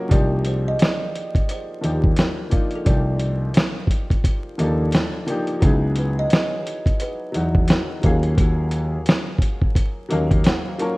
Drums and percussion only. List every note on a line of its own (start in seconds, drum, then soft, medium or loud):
0.11 kick loud
0.11 closed hi-hat medium
0.45 closed hi-hat medium
0.79 snare loud
0.79 closed hi-hat medium
1.15 closed hi-hat medium
1.35 kick medium
1.35 closed hi-hat soft
1.49 closed hi-hat medium
1.84 closed hi-hat medium
2.04 kick medium
2.17 snare loud
2.17 closed hi-hat medium
2.51 kick medium
2.51 closed hi-hat medium
2.71 closed hi-hat soft
2.86 kick medium
2.86 closed hi-hat medium
3.19 closed hi-hat medium
3.54 snare loud
3.54 closed hi-hat medium
3.87 kick medium
3.87 closed hi-hat medium
4.10 kick medium
4.10 closed hi-hat soft
4.24 kick medium
4.24 closed hi-hat medium
4.59 closed hi-hat medium
4.92 snare loud
4.92 closed hi-hat medium
5.28 closed hi-hat medium
5.47 closed hi-hat soft
5.62 kick loud
5.62 closed hi-hat medium
5.96 closed hi-hat medium
6.30 snare loud
6.30 closed hi-hat medium
6.67 closed hi-hat medium
6.86 kick medium
6.86 closed hi-hat soft
7.00 closed hi-hat medium
7.34 closed hi-hat medium
7.55 kick medium
7.68 snare loud
7.68 closed hi-hat medium
8.03 kick medium
8.03 closed hi-hat medium
8.23 closed hi-hat soft
8.38 kick loud
8.38 closed hi-hat medium
8.71 closed hi-hat medium
9.06 snare loud
9.06 closed hi-hat medium
9.39 kick medium
9.39 closed hi-hat medium
9.62 kick medium
9.75 kick medium
9.75 closed hi-hat medium
10.11 closed hi-hat medium
10.31 kick medium
10.31 closed hi-hat soft
10.44 snare loud
10.44 closed hi-hat medium
10.79 closed hi-hat medium